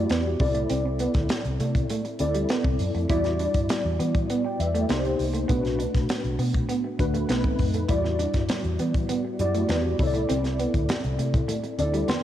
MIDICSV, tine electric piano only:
0, 0, Header, 1, 2, 480
1, 0, Start_track
1, 0, Key_signature, 1, "minor"
1, 0, Tempo, 599401
1, 562, Time_signature, 4, 2, 24, 8
1, 9795, End_track
2, 0, Start_track
2, 0, Title_t, "Tine electric piano"
2, 0, Program_c, 0, 4
2, 0, Control_c, 0, 64, 127
2, 0, Note_on_c, 0, 55, 77
2, 0, Note_on_c, 0, 64, 69
2, 0, Note_on_c, 0, 66, 71
2, 0, Note_on_c, 0, 67, 77
2, 0, Note_on_c, 0, 74, 76
2, 311, Note_off_c, 0, 64, 0
2, 316, Note_off_c, 0, 74, 0
2, 318, Note_on_c, 0, 60, 78
2, 321, Note_on_c, 0, 64, 74
2, 322, Note_off_c, 0, 67, 0
2, 325, Note_off_c, 0, 66, 0
2, 326, Note_on_c, 0, 69, 70
2, 326, Note_on_c, 0, 74, 86
2, 332, Control_c, 0, 64, 0
2, 337, Note_off_c, 0, 55, 0
2, 461, Control_c, 0, 64, 127
2, 1207, Note_off_c, 0, 60, 0
2, 1208, Note_off_c, 0, 64, 0
2, 1210, Note_off_c, 0, 74, 0
2, 1211, Note_off_c, 0, 69, 0
2, 1753, Note_on_c, 0, 60, 76
2, 1756, Note_on_c, 0, 64, 69
2, 1761, Note_on_c, 0, 69, 66
2, 1765, Note_on_c, 0, 74, 82
2, 2422, Note_off_c, 0, 60, 0
2, 2424, Note_off_c, 0, 64, 0
2, 2426, Note_off_c, 0, 69, 0
2, 2428, Note_off_c, 0, 74, 0
2, 2473, Note_on_c, 0, 55, 86
2, 2476, Note_on_c, 0, 64, 69
2, 2478, Note_on_c, 0, 66, 74
2, 2482, Note_on_c, 0, 74, 96
2, 2491, Control_c, 0, 64, 0
2, 2635, Control_c, 0, 64, 127
2, 3364, Note_off_c, 0, 55, 0
2, 3365, Note_off_c, 0, 64, 0
2, 3366, Note_off_c, 0, 66, 0
2, 3368, Note_off_c, 0, 74, 0
2, 3561, Note_on_c, 0, 79, 54
2, 3567, Note_on_c, 0, 74, 53
2, 3675, Note_off_c, 0, 79, 0
2, 3678, Note_off_c, 0, 74, 0
2, 3681, Note_on_c, 0, 76, 66
2, 3687, Note_on_c, 0, 71, 52
2, 3795, Note_off_c, 0, 76, 0
2, 3798, Note_off_c, 0, 71, 0
2, 3802, Note_on_c, 0, 74, 54
2, 3804, Note_on_c, 0, 69, 48
2, 3916, Note_on_c, 0, 58, 83
2, 3918, Note_on_c, 0, 63, 74
2, 3923, Note_on_c, 0, 67, 78
2, 3925, Note_on_c, 0, 72, 91
2, 3931, Control_c, 0, 64, 0
2, 4029, Note_off_c, 0, 74, 0
2, 4031, Note_off_c, 0, 69, 0
2, 4088, Control_c, 0, 64, 127
2, 4362, Note_off_c, 0, 58, 0
2, 4363, Note_off_c, 0, 63, 0
2, 4365, Note_off_c, 0, 67, 0
2, 4366, Note_off_c, 0, 72, 0
2, 4398, Note_on_c, 0, 57, 82
2, 4398, Note_on_c, 0, 62, 76
2, 4405, Note_on_c, 0, 66, 74
2, 4409, Note_on_c, 0, 71, 88
2, 4412, Control_c, 0, 64, 0
2, 4575, Control_c, 0, 64, 127
2, 5286, Note_off_c, 0, 57, 0
2, 5286, Note_off_c, 0, 62, 0
2, 5289, Note_off_c, 0, 66, 0
2, 5291, Note_off_c, 0, 71, 0
2, 5594, Note_on_c, 0, 57, 80
2, 5594, Note_on_c, 0, 62, 63
2, 5598, Note_on_c, 0, 66, 70
2, 5603, Note_on_c, 0, 71, 90
2, 5828, Note_off_c, 0, 57, 0
2, 5838, Note_off_c, 0, 62, 0
2, 5838, Note_on_c, 0, 57, 73
2, 5839, Note_off_c, 0, 66, 0
2, 5839, Note_off_c, 0, 71, 0
2, 5844, Note_on_c, 0, 60, 70
2, 5846, Note_on_c, 0, 63, 74
2, 5848, Note_on_c, 0, 71, 81
2, 5851, Control_c, 0, 64, 0
2, 5977, Control_c, 0, 64, 127
2, 6282, Note_off_c, 0, 57, 0
2, 6286, Note_off_c, 0, 60, 0
2, 6287, Note_off_c, 0, 63, 0
2, 6288, Note_off_c, 0, 71, 0
2, 6317, Note_on_c, 0, 55, 87
2, 6321, Note_on_c, 0, 64, 73
2, 6323, Note_on_c, 0, 66, 72
2, 6327, Note_on_c, 0, 74, 91
2, 6332, Control_c, 0, 64, 0
2, 6448, Control_c, 0, 64, 127
2, 7205, Note_off_c, 0, 55, 0
2, 7207, Note_off_c, 0, 64, 0
2, 7208, Note_off_c, 0, 66, 0
2, 7210, Note_off_c, 0, 74, 0
2, 7520, Note_on_c, 0, 67, 69
2, 7524, Note_on_c, 0, 64, 69
2, 7527, Note_on_c, 0, 66, 69
2, 7532, Note_on_c, 0, 74, 93
2, 7992, Note_off_c, 0, 64, 0
2, 7998, Note_on_c, 0, 60, 74
2, 8000, Note_off_c, 0, 67, 0
2, 8001, Note_on_c, 0, 64, 76
2, 8003, Note_off_c, 0, 66, 0
2, 8006, Note_off_c, 0, 74, 0
2, 8006, Note_on_c, 0, 69, 73
2, 8010, Note_on_c, 0, 73, 75
2, 8011, Control_c, 0, 64, 0
2, 8057, Note_off_c, 0, 73, 0
2, 8062, Note_on_c, 0, 74, 91
2, 8164, Control_c, 0, 64, 127
2, 8885, Note_off_c, 0, 60, 0
2, 8887, Note_off_c, 0, 64, 0
2, 8889, Note_off_c, 0, 69, 0
2, 8918, Note_off_c, 0, 74, 0
2, 9435, Note_on_c, 0, 60, 78
2, 9438, Note_on_c, 0, 62, 53
2, 9440, Note_on_c, 0, 69, 72
2, 9444, Note_on_c, 0, 74, 84
2, 9488, Note_on_c, 0, 64, 73
2, 9491, Note_off_c, 0, 62, 0
2, 9680, Note_on_c, 0, 84, 63
2, 9682, Note_off_c, 0, 74, 0
2, 9686, Note_on_c, 0, 79, 50
2, 9794, Note_off_c, 0, 84, 0
2, 9795, Note_off_c, 0, 60, 0
2, 9795, Note_off_c, 0, 64, 0
2, 9795, Note_off_c, 0, 69, 0
2, 9795, Note_off_c, 0, 79, 0
2, 9795, End_track
0, 0, End_of_file